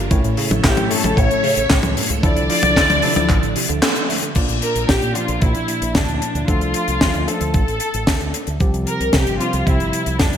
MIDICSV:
0, 0, Header, 1, 7, 480
1, 0, Start_track
1, 0, Key_signature, -1, "minor"
1, 0, Tempo, 530973
1, 99, Time_signature, 4, 2, 24, 8
1, 9375, End_track
2, 0, Start_track
2, 0, Title_t, "Violin section"
2, 0, Program_c, 0, 48
2, 581, Note_on_c, 0, 67, 92
2, 803, Note_off_c, 0, 67, 0
2, 818, Note_on_c, 0, 69, 95
2, 1059, Note_off_c, 0, 69, 0
2, 1059, Note_on_c, 0, 73, 113
2, 1779, Note_off_c, 0, 73, 0
2, 2018, Note_on_c, 0, 74, 127
2, 3423, Note_off_c, 0, 74, 0
2, 4182, Note_on_c, 0, 70, 100
2, 4404, Note_off_c, 0, 70, 0
2, 4419, Note_on_c, 0, 67, 102
2, 4659, Note_off_c, 0, 67, 0
2, 4661, Note_on_c, 0, 65, 89
2, 4900, Note_off_c, 0, 65, 0
2, 4901, Note_on_c, 0, 64, 98
2, 5380, Note_off_c, 0, 64, 0
2, 5380, Note_on_c, 0, 62, 91
2, 5860, Note_off_c, 0, 62, 0
2, 5860, Note_on_c, 0, 65, 105
2, 6579, Note_on_c, 0, 69, 89
2, 6580, Note_off_c, 0, 65, 0
2, 6809, Note_off_c, 0, 69, 0
2, 6820, Note_on_c, 0, 69, 97
2, 7504, Note_off_c, 0, 69, 0
2, 8018, Note_on_c, 0, 70, 104
2, 8242, Note_off_c, 0, 70, 0
2, 8260, Note_on_c, 0, 67, 105
2, 8497, Note_on_c, 0, 65, 92
2, 8499, Note_off_c, 0, 67, 0
2, 8721, Note_off_c, 0, 65, 0
2, 8736, Note_on_c, 0, 64, 98
2, 9217, Note_on_c, 0, 62, 95
2, 9218, Note_off_c, 0, 64, 0
2, 9375, Note_off_c, 0, 62, 0
2, 9375, End_track
3, 0, Start_track
3, 0, Title_t, "String machine"
3, 0, Program_c, 1, 50
3, 98, Note_on_c, 1, 57, 81
3, 98, Note_on_c, 1, 69, 76
3, 98, Note_on_c, 1, 73, 79
3, 98, Note_on_c, 1, 76, 93
3, 1999, Note_off_c, 1, 69, 0
3, 1999, Note_off_c, 1, 73, 0
3, 1999, Note_off_c, 1, 76, 0
3, 2000, Note_off_c, 1, 57, 0
3, 2019, Note_on_c, 1, 50, 87
3, 2020, Note_on_c, 1, 53, 91
3, 2020, Note_on_c, 1, 62, 76
3, 2020, Note_on_c, 1, 64, 75
3, 3920, Note_off_c, 1, 50, 0
3, 3920, Note_off_c, 1, 53, 0
3, 3920, Note_off_c, 1, 62, 0
3, 3921, Note_off_c, 1, 64, 0
3, 9375, End_track
4, 0, Start_track
4, 0, Title_t, "Tine electric piano"
4, 0, Program_c, 2, 4
4, 99, Note_on_c, 2, 64, 91
4, 100, Note_on_c, 2, 45, 95
4, 100, Note_on_c, 2, 57, 89
4, 100, Note_on_c, 2, 61, 89
4, 100, Note_on_c, 2, 73, 107
4, 790, Note_off_c, 2, 64, 0
4, 791, Note_off_c, 2, 45, 0
4, 791, Note_off_c, 2, 57, 0
4, 791, Note_off_c, 2, 61, 0
4, 791, Note_off_c, 2, 73, 0
4, 819, Note_on_c, 2, 64, 87
4, 820, Note_on_c, 2, 45, 90
4, 820, Note_on_c, 2, 57, 85
4, 820, Note_on_c, 2, 61, 87
4, 820, Note_on_c, 2, 73, 101
4, 1991, Note_off_c, 2, 45, 0
4, 1991, Note_off_c, 2, 57, 0
4, 1991, Note_off_c, 2, 61, 0
4, 1991, Note_off_c, 2, 64, 0
4, 1991, Note_off_c, 2, 73, 0
4, 2019, Note_on_c, 2, 53, 97
4, 2019, Note_on_c, 2, 62, 91
4, 2019, Note_on_c, 2, 64, 91
4, 2019, Note_on_c, 2, 69, 108
4, 2710, Note_off_c, 2, 53, 0
4, 2710, Note_off_c, 2, 62, 0
4, 2710, Note_off_c, 2, 64, 0
4, 2710, Note_off_c, 2, 69, 0
4, 2738, Note_on_c, 2, 53, 100
4, 2738, Note_on_c, 2, 62, 91
4, 2738, Note_on_c, 2, 69, 108
4, 2739, Note_on_c, 2, 64, 90
4, 3045, Note_off_c, 2, 53, 0
4, 3045, Note_off_c, 2, 62, 0
4, 3045, Note_off_c, 2, 64, 0
4, 3045, Note_off_c, 2, 69, 0
4, 3938, Note_on_c, 2, 58, 83
4, 3938, Note_on_c, 2, 62, 78
4, 3938, Note_on_c, 2, 65, 80
4, 3938, Note_on_c, 2, 74, 98
4, 3939, Note_on_c, 2, 46, 88
4, 4630, Note_off_c, 2, 46, 0
4, 4630, Note_off_c, 2, 58, 0
4, 4630, Note_off_c, 2, 62, 0
4, 4630, Note_off_c, 2, 65, 0
4, 4630, Note_off_c, 2, 74, 0
4, 4659, Note_on_c, 2, 58, 77
4, 4659, Note_on_c, 2, 74, 93
4, 4660, Note_on_c, 2, 46, 86
4, 4660, Note_on_c, 2, 53, 76
4, 4660, Note_on_c, 2, 62, 79
4, 5830, Note_off_c, 2, 58, 0
4, 5830, Note_off_c, 2, 74, 0
4, 5831, Note_off_c, 2, 46, 0
4, 5831, Note_off_c, 2, 53, 0
4, 5831, Note_off_c, 2, 62, 0
4, 5859, Note_on_c, 2, 53, 96
4, 5859, Note_on_c, 2, 57, 85
4, 5859, Note_on_c, 2, 62, 85
4, 5859, Note_on_c, 2, 69, 100
4, 6550, Note_off_c, 2, 53, 0
4, 6550, Note_off_c, 2, 57, 0
4, 6550, Note_off_c, 2, 62, 0
4, 6550, Note_off_c, 2, 69, 0
4, 6578, Note_on_c, 2, 53, 90
4, 6578, Note_on_c, 2, 62, 83
4, 6579, Note_on_c, 2, 57, 85
4, 6579, Note_on_c, 2, 69, 101
4, 6885, Note_off_c, 2, 53, 0
4, 6885, Note_off_c, 2, 57, 0
4, 6885, Note_off_c, 2, 62, 0
4, 6885, Note_off_c, 2, 69, 0
4, 7778, Note_on_c, 2, 55, 85
4, 7778, Note_on_c, 2, 60, 82
4, 7778, Note_on_c, 2, 67, 101
4, 7779, Note_on_c, 2, 48, 90
4, 7779, Note_on_c, 2, 53, 87
4, 8470, Note_off_c, 2, 48, 0
4, 8470, Note_off_c, 2, 53, 0
4, 8470, Note_off_c, 2, 55, 0
4, 8470, Note_off_c, 2, 60, 0
4, 8470, Note_off_c, 2, 67, 0
4, 8499, Note_on_c, 2, 48, 89
4, 8499, Note_on_c, 2, 55, 81
4, 8499, Note_on_c, 2, 60, 80
4, 8499, Note_on_c, 2, 67, 93
4, 8500, Note_on_c, 2, 53, 78
4, 9375, Note_off_c, 2, 48, 0
4, 9375, Note_off_c, 2, 53, 0
4, 9375, Note_off_c, 2, 55, 0
4, 9375, Note_off_c, 2, 60, 0
4, 9375, Note_off_c, 2, 67, 0
4, 9375, End_track
5, 0, Start_track
5, 0, Title_t, "Synth arpeggio sound"
5, 0, Program_c, 3, 84
5, 100, Note_on_c, 3, 45, 86
5, 145, Note_off_c, 3, 45, 0
5, 220, Note_on_c, 3, 45, 77
5, 295, Note_off_c, 3, 45, 0
5, 340, Note_on_c, 3, 49, 106
5, 415, Note_off_c, 3, 49, 0
5, 459, Note_on_c, 3, 45, 71
5, 568, Note_off_c, 3, 45, 0
5, 579, Note_on_c, 3, 45, 87
5, 654, Note_off_c, 3, 45, 0
5, 699, Note_on_c, 3, 52, 74
5, 744, Note_off_c, 3, 52, 0
5, 819, Note_on_c, 3, 43, 82
5, 864, Note_off_c, 3, 43, 0
5, 939, Note_on_c, 3, 49, 78
5, 1014, Note_off_c, 3, 49, 0
5, 1058, Note_on_c, 3, 45, 88
5, 1104, Note_off_c, 3, 45, 0
5, 1179, Note_on_c, 3, 45, 72
5, 1254, Note_off_c, 3, 45, 0
5, 1298, Note_on_c, 3, 49, 109
5, 1374, Note_off_c, 3, 49, 0
5, 1419, Note_on_c, 3, 45, 79
5, 1528, Note_off_c, 3, 45, 0
5, 1539, Note_on_c, 3, 45, 85
5, 1614, Note_off_c, 3, 45, 0
5, 1658, Note_on_c, 3, 52, 82
5, 1704, Note_off_c, 3, 52, 0
5, 1779, Note_on_c, 3, 43, 79
5, 1824, Note_off_c, 3, 43, 0
5, 1898, Note_on_c, 3, 49, 76
5, 1974, Note_off_c, 3, 49, 0
5, 2018, Note_on_c, 3, 50, 84
5, 2064, Note_off_c, 3, 50, 0
5, 2138, Note_on_c, 3, 50, 77
5, 2214, Note_off_c, 3, 50, 0
5, 2258, Note_on_c, 3, 53, 105
5, 2334, Note_off_c, 3, 53, 0
5, 2378, Note_on_c, 3, 50, 77
5, 2487, Note_off_c, 3, 50, 0
5, 2498, Note_on_c, 3, 50, 84
5, 2574, Note_off_c, 3, 50, 0
5, 2618, Note_on_c, 3, 57, 76
5, 2664, Note_off_c, 3, 57, 0
5, 2738, Note_on_c, 3, 48, 80
5, 2784, Note_off_c, 3, 48, 0
5, 2858, Note_on_c, 3, 53, 76
5, 2934, Note_off_c, 3, 53, 0
5, 2979, Note_on_c, 3, 50, 83
5, 3024, Note_off_c, 3, 50, 0
5, 3099, Note_on_c, 3, 50, 74
5, 3174, Note_off_c, 3, 50, 0
5, 3219, Note_on_c, 3, 48, 81
5, 3295, Note_off_c, 3, 48, 0
5, 3339, Note_on_c, 3, 50, 81
5, 3448, Note_off_c, 3, 50, 0
5, 3459, Note_on_c, 3, 50, 83
5, 3568, Note_off_c, 3, 50, 0
5, 3578, Note_on_c, 3, 50, 103
5, 3624, Note_off_c, 3, 50, 0
5, 3698, Note_on_c, 3, 57, 80
5, 3811, Note_off_c, 3, 57, 0
5, 3818, Note_on_c, 3, 50, 77
5, 3894, Note_off_c, 3, 50, 0
5, 9375, End_track
6, 0, Start_track
6, 0, Title_t, "Fingered electric bass"
6, 0, Program_c, 4, 33
6, 100, Note_on_c, 4, 33, 105
6, 195, Note_off_c, 4, 33, 0
6, 220, Note_on_c, 4, 33, 78
6, 315, Note_off_c, 4, 33, 0
6, 460, Note_on_c, 4, 33, 79
6, 555, Note_off_c, 4, 33, 0
6, 579, Note_on_c, 4, 33, 101
6, 675, Note_off_c, 4, 33, 0
6, 700, Note_on_c, 4, 45, 77
6, 795, Note_off_c, 4, 45, 0
6, 940, Note_on_c, 4, 33, 83
6, 1035, Note_off_c, 4, 33, 0
6, 1059, Note_on_c, 4, 33, 101
6, 1154, Note_off_c, 4, 33, 0
6, 1179, Note_on_c, 4, 45, 75
6, 1274, Note_off_c, 4, 45, 0
6, 1419, Note_on_c, 4, 33, 81
6, 1514, Note_off_c, 4, 33, 0
6, 1540, Note_on_c, 4, 37, 101
6, 1635, Note_off_c, 4, 37, 0
6, 1659, Note_on_c, 4, 37, 73
6, 1754, Note_off_c, 4, 37, 0
6, 1899, Note_on_c, 4, 37, 80
6, 1994, Note_off_c, 4, 37, 0
6, 2020, Note_on_c, 4, 38, 98
6, 2115, Note_off_c, 4, 38, 0
6, 2140, Note_on_c, 4, 36, 78
6, 2235, Note_off_c, 4, 36, 0
6, 2379, Note_on_c, 4, 36, 78
6, 2475, Note_off_c, 4, 36, 0
6, 2499, Note_on_c, 4, 38, 99
6, 2595, Note_off_c, 4, 38, 0
6, 2620, Note_on_c, 4, 38, 75
6, 2715, Note_off_c, 4, 38, 0
6, 2860, Note_on_c, 4, 38, 82
6, 2955, Note_off_c, 4, 38, 0
6, 2980, Note_on_c, 4, 33, 99
6, 3075, Note_off_c, 4, 33, 0
6, 3101, Note_on_c, 4, 33, 75
6, 3195, Note_off_c, 4, 33, 0
6, 3340, Note_on_c, 4, 38, 81
6, 3435, Note_off_c, 4, 38, 0
6, 3939, Note_on_c, 4, 34, 93
6, 4035, Note_off_c, 4, 34, 0
6, 4060, Note_on_c, 4, 34, 68
6, 4155, Note_off_c, 4, 34, 0
6, 4299, Note_on_c, 4, 34, 72
6, 4394, Note_off_c, 4, 34, 0
6, 4420, Note_on_c, 4, 34, 95
6, 4515, Note_off_c, 4, 34, 0
6, 4540, Note_on_c, 4, 46, 73
6, 4635, Note_off_c, 4, 46, 0
6, 4781, Note_on_c, 4, 34, 78
6, 4875, Note_off_c, 4, 34, 0
6, 4900, Note_on_c, 4, 34, 97
6, 4995, Note_off_c, 4, 34, 0
6, 5261, Note_on_c, 4, 34, 76
6, 5355, Note_off_c, 4, 34, 0
6, 5380, Note_on_c, 4, 38, 94
6, 5475, Note_off_c, 4, 38, 0
6, 5501, Note_on_c, 4, 38, 68
6, 5596, Note_off_c, 4, 38, 0
6, 5741, Note_on_c, 4, 38, 79
6, 5835, Note_off_c, 4, 38, 0
6, 5860, Note_on_c, 4, 38, 94
6, 5955, Note_off_c, 4, 38, 0
6, 5980, Note_on_c, 4, 36, 72
6, 6075, Note_off_c, 4, 36, 0
6, 6220, Note_on_c, 4, 36, 78
6, 6315, Note_off_c, 4, 36, 0
6, 6340, Note_on_c, 4, 38, 93
6, 6435, Note_off_c, 4, 38, 0
6, 6460, Note_on_c, 4, 38, 72
6, 6555, Note_off_c, 4, 38, 0
6, 6699, Note_on_c, 4, 38, 79
6, 6794, Note_off_c, 4, 38, 0
6, 6819, Note_on_c, 4, 33, 96
6, 6915, Note_off_c, 4, 33, 0
6, 6939, Note_on_c, 4, 33, 68
6, 7035, Note_off_c, 4, 33, 0
6, 7180, Note_on_c, 4, 33, 75
6, 7275, Note_off_c, 4, 33, 0
6, 7300, Note_on_c, 4, 38, 96
6, 7395, Note_off_c, 4, 38, 0
6, 7420, Note_on_c, 4, 38, 70
6, 7515, Note_off_c, 4, 38, 0
6, 7660, Note_on_c, 4, 38, 78
6, 7755, Note_off_c, 4, 38, 0
6, 7779, Note_on_c, 4, 36, 97
6, 7875, Note_off_c, 4, 36, 0
6, 7899, Note_on_c, 4, 36, 74
6, 7994, Note_off_c, 4, 36, 0
6, 8139, Note_on_c, 4, 36, 76
6, 8234, Note_off_c, 4, 36, 0
6, 8260, Note_on_c, 4, 36, 97
6, 8355, Note_off_c, 4, 36, 0
6, 8379, Note_on_c, 4, 31, 74
6, 8474, Note_off_c, 4, 31, 0
6, 8621, Note_on_c, 4, 36, 79
6, 8715, Note_off_c, 4, 36, 0
6, 8740, Note_on_c, 4, 36, 95
6, 8835, Note_off_c, 4, 36, 0
6, 8862, Note_on_c, 4, 31, 69
6, 8956, Note_off_c, 4, 31, 0
6, 9100, Note_on_c, 4, 36, 74
6, 9195, Note_off_c, 4, 36, 0
6, 9220, Note_on_c, 4, 41, 97
6, 9315, Note_off_c, 4, 41, 0
6, 9340, Note_on_c, 4, 41, 70
6, 9375, Note_off_c, 4, 41, 0
6, 9375, End_track
7, 0, Start_track
7, 0, Title_t, "Drums"
7, 98, Note_on_c, 9, 42, 83
7, 100, Note_on_c, 9, 36, 110
7, 188, Note_off_c, 9, 42, 0
7, 190, Note_off_c, 9, 36, 0
7, 220, Note_on_c, 9, 42, 52
7, 310, Note_off_c, 9, 42, 0
7, 337, Note_on_c, 9, 46, 107
7, 428, Note_off_c, 9, 46, 0
7, 459, Note_on_c, 9, 42, 53
7, 463, Note_on_c, 9, 48, 76
7, 550, Note_off_c, 9, 42, 0
7, 553, Note_off_c, 9, 48, 0
7, 579, Note_on_c, 9, 36, 111
7, 579, Note_on_c, 9, 38, 116
7, 579, Note_on_c, 9, 42, 75
7, 581, Note_on_c, 9, 39, 92
7, 669, Note_off_c, 9, 42, 0
7, 670, Note_off_c, 9, 36, 0
7, 670, Note_off_c, 9, 38, 0
7, 671, Note_off_c, 9, 39, 0
7, 696, Note_on_c, 9, 42, 59
7, 698, Note_on_c, 9, 48, 75
7, 786, Note_off_c, 9, 42, 0
7, 788, Note_off_c, 9, 48, 0
7, 820, Note_on_c, 9, 46, 126
7, 910, Note_off_c, 9, 46, 0
7, 942, Note_on_c, 9, 48, 75
7, 945, Note_on_c, 9, 42, 60
7, 1033, Note_off_c, 9, 48, 0
7, 1035, Note_off_c, 9, 42, 0
7, 1059, Note_on_c, 9, 36, 111
7, 1065, Note_on_c, 9, 42, 85
7, 1149, Note_off_c, 9, 36, 0
7, 1156, Note_off_c, 9, 42, 0
7, 1183, Note_on_c, 9, 42, 52
7, 1273, Note_off_c, 9, 42, 0
7, 1299, Note_on_c, 9, 46, 108
7, 1390, Note_off_c, 9, 46, 0
7, 1423, Note_on_c, 9, 42, 52
7, 1513, Note_off_c, 9, 42, 0
7, 1535, Note_on_c, 9, 38, 122
7, 1538, Note_on_c, 9, 39, 78
7, 1539, Note_on_c, 9, 36, 109
7, 1540, Note_on_c, 9, 42, 82
7, 1625, Note_off_c, 9, 38, 0
7, 1629, Note_off_c, 9, 36, 0
7, 1629, Note_off_c, 9, 39, 0
7, 1631, Note_off_c, 9, 42, 0
7, 1654, Note_on_c, 9, 48, 75
7, 1659, Note_on_c, 9, 42, 60
7, 1745, Note_off_c, 9, 48, 0
7, 1750, Note_off_c, 9, 42, 0
7, 1781, Note_on_c, 9, 46, 120
7, 1872, Note_off_c, 9, 46, 0
7, 1897, Note_on_c, 9, 42, 54
7, 1988, Note_off_c, 9, 42, 0
7, 2019, Note_on_c, 9, 36, 113
7, 2019, Note_on_c, 9, 42, 79
7, 2109, Note_off_c, 9, 36, 0
7, 2110, Note_off_c, 9, 42, 0
7, 2138, Note_on_c, 9, 42, 57
7, 2229, Note_off_c, 9, 42, 0
7, 2257, Note_on_c, 9, 46, 107
7, 2348, Note_off_c, 9, 46, 0
7, 2376, Note_on_c, 9, 48, 82
7, 2377, Note_on_c, 9, 42, 60
7, 2467, Note_off_c, 9, 48, 0
7, 2468, Note_off_c, 9, 42, 0
7, 2499, Note_on_c, 9, 36, 118
7, 2502, Note_on_c, 9, 42, 77
7, 2503, Note_on_c, 9, 38, 115
7, 2510, Note_on_c, 9, 39, 92
7, 2589, Note_off_c, 9, 36, 0
7, 2592, Note_off_c, 9, 42, 0
7, 2594, Note_off_c, 9, 38, 0
7, 2600, Note_off_c, 9, 39, 0
7, 2621, Note_on_c, 9, 48, 80
7, 2625, Note_on_c, 9, 42, 64
7, 2711, Note_off_c, 9, 48, 0
7, 2715, Note_off_c, 9, 42, 0
7, 2733, Note_on_c, 9, 46, 105
7, 2823, Note_off_c, 9, 46, 0
7, 2859, Note_on_c, 9, 48, 75
7, 2860, Note_on_c, 9, 42, 59
7, 2949, Note_off_c, 9, 48, 0
7, 2951, Note_off_c, 9, 42, 0
7, 2976, Note_on_c, 9, 39, 56
7, 2979, Note_on_c, 9, 36, 111
7, 2979, Note_on_c, 9, 42, 81
7, 3066, Note_off_c, 9, 39, 0
7, 3069, Note_off_c, 9, 42, 0
7, 3070, Note_off_c, 9, 36, 0
7, 3101, Note_on_c, 9, 42, 55
7, 3191, Note_off_c, 9, 42, 0
7, 3216, Note_on_c, 9, 46, 102
7, 3306, Note_off_c, 9, 46, 0
7, 3337, Note_on_c, 9, 42, 55
7, 3428, Note_off_c, 9, 42, 0
7, 3457, Note_on_c, 9, 38, 113
7, 3457, Note_on_c, 9, 42, 81
7, 3459, Note_on_c, 9, 39, 94
7, 3547, Note_off_c, 9, 42, 0
7, 3548, Note_off_c, 9, 38, 0
7, 3550, Note_off_c, 9, 39, 0
7, 3577, Note_on_c, 9, 42, 62
7, 3667, Note_off_c, 9, 42, 0
7, 3706, Note_on_c, 9, 46, 105
7, 3796, Note_off_c, 9, 46, 0
7, 3817, Note_on_c, 9, 42, 52
7, 3908, Note_off_c, 9, 42, 0
7, 3932, Note_on_c, 9, 42, 72
7, 3939, Note_on_c, 9, 36, 109
7, 3943, Note_on_c, 9, 49, 84
7, 4023, Note_off_c, 9, 42, 0
7, 4030, Note_off_c, 9, 36, 0
7, 4033, Note_off_c, 9, 49, 0
7, 4057, Note_on_c, 9, 42, 55
7, 4148, Note_off_c, 9, 42, 0
7, 4178, Note_on_c, 9, 42, 92
7, 4268, Note_off_c, 9, 42, 0
7, 4300, Note_on_c, 9, 42, 55
7, 4390, Note_off_c, 9, 42, 0
7, 4419, Note_on_c, 9, 36, 110
7, 4420, Note_on_c, 9, 38, 120
7, 4420, Note_on_c, 9, 42, 70
7, 4510, Note_off_c, 9, 36, 0
7, 4510, Note_off_c, 9, 38, 0
7, 4510, Note_off_c, 9, 42, 0
7, 4539, Note_on_c, 9, 42, 57
7, 4629, Note_off_c, 9, 42, 0
7, 4657, Note_on_c, 9, 42, 101
7, 4748, Note_off_c, 9, 42, 0
7, 4776, Note_on_c, 9, 42, 57
7, 4866, Note_off_c, 9, 42, 0
7, 4896, Note_on_c, 9, 42, 72
7, 4899, Note_on_c, 9, 36, 107
7, 4986, Note_off_c, 9, 42, 0
7, 4990, Note_off_c, 9, 36, 0
7, 5014, Note_on_c, 9, 42, 49
7, 5104, Note_off_c, 9, 42, 0
7, 5137, Note_on_c, 9, 42, 90
7, 5227, Note_off_c, 9, 42, 0
7, 5261, Note_on_c, 9, 42, 57
7, 5351, Note_off_c, 9, 42, 0
7, 5377, Note_on_c, 9, 42, 72
7, 5378, Note_on_c, 9, 38, 110
7, 5380, Note_on_c, 9, 36, 113
7, 5467, Note_off_c, 9, 42, 0
7, 5468, Note_off_c, 9, 38, 0
7, 5470, Note_off_c, 9, 36, 0
7, 5499, Note_on_c, 9, 42, 57
7, 5589, Note_off_c, 9, 42, 0
7, 5622, Note_on_c, 9, 42, 92
7, 5713, Note_off_c, 9, 42, 0
7, 5742, Note_on_c, 9, 42, 50
7, 5833, Note_off_c, 9, 42, 0
7, 5860, Note_on_c, 9, 36, 111
7, 5860, Note_on_c, 9, 42, 72
7, 5950, Note_off_c, 9, 36, 0
7, 5951, Note_off_c, 9, 42, 0
7, 5979, Note_on_c, 9, 42, 50
7, 6069, Note_off_c, 9, 42, 0
7, 6093, Note_on_c, 9, 42, 97
7, 6183, Note_off_c, 9, 42, 0
7, 6218, Note_on_c, 9, 42, 48
7, 6309, Note_off_c, 9, 42, 0
7, 6337, Note_on_c, 9, 38, 119
7, 6340, Note_on_c, 9, 36, 113
7, 6343, Note_on_c, 9, 42, 66
7, 6427, Note_off_c, 9, 38, 0
7, 6430, Note_off_c, 9, 36, 0
7, 6433, Note_off_c, 9, 42, 0
7, 6454, Note_on_c, 9, 42, 52
7, 6545, Note_off_c, 9, 42, 0
7, 6581, Note_on_c, 9, 42, 90
7, 6672, Note_off_c, 9, 42, 0
7, 6696, Note_on_c, 9, 42, 54
7, 6786, Note_off_c, 9, 42, 0
7, 6815, Note_on_c, 9, 42, 76
7, 6819, Note_on_c, 9, 36, 110
7, 6906, Note_off_c, 9, 42, 0
7, 6910, Note_off_c, 9, 36, 0
7, 6944, Note_on_c, 9, 42, 55
7, 7035, Note_off_c, 9, 42, 0
7, 7050, Note_on_c, 9, 42, 91
7, 7141, Note_off_c, 9, 42, 0
7, 7176, Note_on_c, 9, 42, 55
7, 7267, Note_off_c, 9, 42, 0
7, 7297, Note_on_c, 9, 38, 117
7, 7298, Note_on_c, 9, 42, 77
7, 7299, Note_on_c, 9, 36, 112
7, 7387, Note_off_c, 9, 38, 0
7, 7388, Note_off_c, 9, 42, 0
7, 7390, Note_off_c, 9, 36, 0
7, 7419, Note_on_c, 9, 42, 57
7, 7509, Note_off_c, 9, 42, 0
7, 7540, Note_on_c, 9, 42, 100
7, 7630, Note_off_c, 9, 42, 0
7, 7656, Note_on_c, 9, 42, 53
7, 7747, Note_off_c, 9, 42, 0
7, 7776, Note_on_c, 9, 42, 70
7, 7779, Note_on_c, 9, 36, 110
7, 7866, Note_off_c, 9, 42, 0
7, 7870, Note_off_c, 9, 36, 0
7, 7901, Note_on_c, 9, 42, 49
7, 7991, Note_off_c, 9, 42, 0
7, 8017, Note_on_c, 9, 42, 85
7, 8108, Note_off_c, 9, 42, 0
7, 8142, Note_on_c, 9, 42, 55
7, 8233, Note_off_c, 9, 42, 0
7, 8252, Note_on_c, 9, 42, 69
7, 8253, Note_on_c, 9, 38, 114
7, 8260, Note_on_c, 9, 36, 114
7, 8342, Note_off_c, 9, 42, 0
7, 8343, Note_off_c, 9, 38, 0
7, 8350, Note_off_c, 9, 36, 0
7, 8378, Note_on_c, 9, 42, 56
7, 8468, Note_off_c, 9, 42, 0
7, 8503, Note_on_c, 9, 42, 82
7, 8593, Note_off_c, 9, 42, 0
7, 8615, Note_on_c, 9, 42, 53
7, 8706, Note_off_c, 9, 42, 0
7, 8740, Note_on_c, 9, 36, 117
7, 8742, Note_on_c, 9, 42, 66
7, 8830, Note_off_c, 9, 36, 0
7, 8832, Note_off_c, 9, 42, 0
7, 8861, Note_on_c, 9, 42, 52
7, 8952, Note_off_c, 9, 42, 0
7, 8979, Note_on_c, 9, 42, 96
7, 9069, Note_off_c, 9, 42, 0
7, 9097, Note_on_c, 9, 42, 52
7, 9187, Note_off_c, 9, 42, 0
7, 9216, Note_on_c, 9, 38, 110
7, 9216, Note_on_c, 9, 42, 75
7, 9220, Note_on_c, 9, 36, 111
7, 9306, Note_off_c, 9, 42, 0
7, 9307, Note_off_c, 9, 38, 0
7, 9310, Note_off_c, 9, 36, 0
7, 9339, Note_on_c, 9, 42, 58
7, 9375, Note_off_c, 9, 42, 0
7, 9375, End_track
0, 0, End_of_file